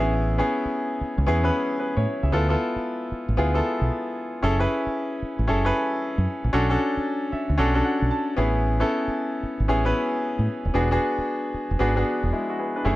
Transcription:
Already playing: A1 B3 C#4 E4 G#4 E5
0.38 B3 C#4 E4 G#4
0.65 muted fingered electric bass stroke
1.01 muted fingered electric bass stroke
1.18 C#2
1.26 E2 B3 C#4 E4 G#4
1.43 B3 C#4 E4 B4
1.80 B4
1.97 A2 E4 C#5
2.23 C#2 G#4 E5
2.32 D2 B3 E4 F4 A4
2.49 B3 E4 F4 A4
2.76 muted fingered electric bass stroke
3.12 muted fingered electric bass stroke
3.29 A1
3.37 D2 B3 E4 F4 G#4
3.54 B3 E4 F4 A4
3.81 B1
4.43 F#1 C#4 E4 G#4 A4
4.59 C#4 E4 G#4 B4
4.86 muted fingered electric bass stroke
5.22 muted fingered electric bass stroke
5.39 A1
5.48 F#1 C#4 E4 G#4 A4
5.65 C#4 E4 G#4 B4
6.18 F#2
6.44 A#1
6.53 B1 C#4 D4 F#4 A4
6.69 C#4 D4 F#4 A4
6.97 muted fingered electric bass stroke
7.32 E5, muted fingered electric bass stroke
7.50 D2
7.58 B1 C#4 D4 F#4 A4 F#5
7.74 C#4 D4 F#4 A4
7.85 F#5
8.02 B1
8.11 A5
8.37 A1 B3 C#4 E4 G#4 B5
8.80 B3 C#4 E4 A4
9.08 muted fingered electric bass stroke
9.43 muted fingered electric bass stroke
9.60 G#1
9.68 A1 B3 C#4 E4 G#4
9.85 B3 C#4 E4 B4
10.39 A2
10.65 D#1
10.74 E1 B3 D4 F#4 G#4
10.91 B3 D4 F#4 G#4
11.18 muted fingered electric bass stroke
11.54 muted fingered electric bass stroke
11.71 E1
11.79 G#1 B3 D4 F#4 G#4
11.96 B3 D4 F#4 G#4
12.23 E1
12.33 G#3 E4
12.50 F#4
12.59 B3 G#4
12.76 D4 B4
12.85 F#1 A3 C#4 E4 G#4

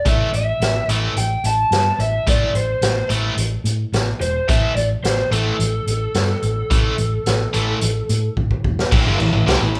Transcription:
0.06 A1 A2 E3 A3 E5, kick, closed hi-hat
0.32 A1 E5, closed hi-hat
0.60 A1, snare, closed hi-hat
0.88 A1 A2 E3 A3, closed hi-hat
1.16 A1 G5, closed hi-hat
1.44 A1 A5, closed hi-hat
1.71 G2, snare, closed hi-hat
1.98 A1 E5, closed hi-hat
2.27 A1 A2 E3 A3 D5, kick, closed hi-hat
2.54 A1 C5, closed hi-hat
2.81 A1, snare, closed hi-hat
3.10 A1 A2 E3 A3, closed hi-hat
3.37 A1, closed hi-hat
3.64 A2, closed hi-hat
3.92 A1, snare, closed hi-hat
4.20 E1 C5, closed hi-hat
4.48 A1 A2 E3 A3 E5, kick, closed hi-hat
4.75 A1 D5, closed hi-hat
5.03 A1 C5, snare, closed hi-hat
5.31 A1 A2 E3 A3 A4, closed hi-hat
5.59 A1, closed hi-hat
5.87 A1, closed hi-hat
6.15 G2, snare, closed hi-hat
6.42 A1, closed hi-hat
6.70 A1 A2 E3 A3, kick, closed hi-hat
6.98 A1, closed hi-hat
7.26 A1, snare, closed hi-hat
7.53 A1 A2 E3 A3, closed hi-hat
7.81 A1, closed hi-hat
8.09 A2, closed hi-hat
8.37 A1, kick
8.51 kick
8.64 E1, kick
8.79 snare
8.92 A1 A2 E3 A3 E4 B4, kick, crash
9.06 G1 G2 D3
9.19 A1 A2 E3, crash
9.33 A1 A2 E3
9.46 C2 C3 G3, snare, crash
9.61 A1 A2 E3
9.75 crash

